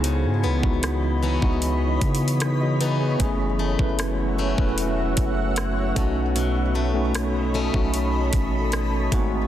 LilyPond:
<<
  \new Staff \with { instrumentName = "Ambient pad" } { \time 4/4 \key b \mixolydian \tempo 4 = 76 << { <e dis'' b''>1 | <fis' e'' fis''>2.~ <fis' e'' fis''>8 <a' dis'' b''>8~ | <a' dis'' b''>2.~ <a' dis'' b''>8 <gis' fis'' a''>8 | } \\ { cis''1~ | cis''1~ | cis''2.~ cis''8 bis'8 | } >> }
  \new Staff \with { instrumentName = "Tine electric piano" } { \time 4/4 \key b \mixolydian << { r2 r8. <b gis'>16 <dis' b'>16 <fis' dis''>16 <dis' b'>16 <b gis'>16~ | <b gis'>16 r2. r8. | r1 | } \\ { <b dis' e' gis'>8 r16 <b dis' e' fis'>4 <b dis' e' fis'>8. r4. | <a cis' e' gis'>8. <a cis' e' b'>4 <a cis' e' b'>4.~ <a cis' e' b'>16 <a cis' dis' fis'>8~ | <a cis' dis' fis'>8 r16 <a cis' dis' fis'>4 <a cis' dis' fis'>4.~ <a cis' dis' fis'>16 <a b bis dis' fis'>8 | } >> }
  \new Staff \with { instrumentName = "Steel-string acoustic guitar" } { \time 4/4 \key b \mixolydian cis8 b4 <e b dis'>2 <e b dis'>8 | fis,8 a4 <e a cis'>2 b,8 | b,8 a4 <dis a cis'>2 gis,8 | }
  \new Staff \with { instrumentName = "808-style bass" } { \clef bass \time 4/4 \key b \mixolydian cis,16 gis,16 cis,16 cis,4 cis,8. cis4. | fis,,8. fis,,4 e,,8. fis,,4 b,,8~ | b,,4.~ b,,16 b,,8. a,,4 gis,,8 | }
  \new DrumStaff \with { instrumentName = "Drums" } \drummode { \time 4/4 hh8. bd16 <hh ss>8. bd16 \tuplet 3/2 { hh16 r16 r16 <hh bd>16 hh16 hh16 } <hh ss>8 hh8 | <hh bd>8. bd16 <hh ss>8. bd16 hh8 <hh bd>8 <hh ss>8 <hh bd>8 | hh4 <hh ss>8. bd16 hh8 <hh bd>8 <hh ss>8 <hh bd>8 | }
>>